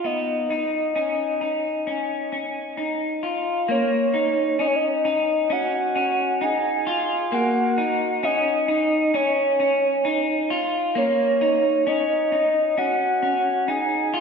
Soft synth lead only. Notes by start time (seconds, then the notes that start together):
0.05 D#5
3.71 C#5
4.60 D#5
4.67 C#5
4.75 D#5
5.52 F#5
6.43 G#5
7.34 F#5
8.24 D#5
9.15 C#5
10.98 C#5
11.88 D#5
12.79 F#5
13.69 G#5